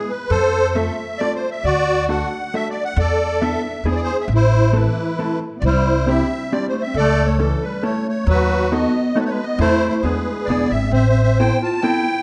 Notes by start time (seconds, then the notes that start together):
Already playing: G#3 B3 E4 G#4
0.10 B4
0.30 F2 A4 C5
0.75 A3 C4 F4 A4 E5
1.18 A3 C4 F4 A4 D5
1.35 C5
1.51 E5
1.64 D2 F#4 D5
2.09 A3 D4 F#4 A4 F#5
2.54 A3 D4 F#4 A4 E5
2.70 D5
2.85 F#5
2.96 E2 A4 D5
3.41 B3 D4 E4 A4 E5
3.84 E2 B3 D4 E4 G#4 D5
3.92 C5 D5
4.04 C5
4.21 E5
4.28 A1
4.34 E4 C5
4.73 E3 A3 C4 E4 A4 B4
5.19 A3 C4 E4 A4
5.56 B3 D5
5.62 C2 E4 C5
5.66 G3
6.07 C4 D4 E4 G4 E5
6.52 G3 C4 D4 E4 G4 D5
6.68 A3 C5
6.82 E5
6.86 C4
6.94 C#2 A4 D5
6.99 A3
7.25 A3 C#5
7.39 E3 A3 C#4 E4 A4
7.62 G3 B4
7.83 A3 C#4 E4 A4 C#5
8.09 A3 C#5
8.26 D#2 F#3 F#4 B4
8.72 B3 D#4 F#4 A4 D#5
9.15 A3 B3 D#4 F#4 A4 C#5
9.19 G#3 B4
9.24 A3 C#5
9.29 G#3 B4
9.43 B3 D#5
9.58 E2 A3 C4 E4 A4 C5
9.89 A3 C5
10.02 E2 B3 D4 E4 G#4 B4
10.07 G#3
10.45 E1 D5
10.50 B3 D4 E4 G#4
10.70 G#1 C4 E5
10.91 A1 C4 C5 E5
11.09 C4 E5
11.23 C4 E5
11.39 B3 C4 E4 A4 G5
11.62 F4 A5
11.82 B3 C4 E4 A4 G5